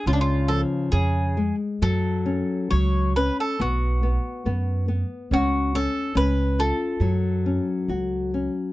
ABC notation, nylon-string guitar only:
X:1
M:2/4
L:1/8
Q:1/4=69
K:F#m
V:1 name="Nylon-string guitar"
C, ^E, C, G, | F, C F, C | B, B, B, B, | C C C ^E |
F, C F C |]